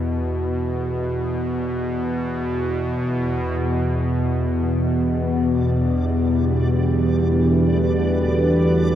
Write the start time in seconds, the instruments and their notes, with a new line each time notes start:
Already playing: synth drone E2 B2
3.60 synth drone E2 B2, analog synth pad E3, synth texture D5
4.59 analog synth pad D4
5.69 analog synth pad G4
6.48 analog synth pad A4
6.83 analog synth pad B4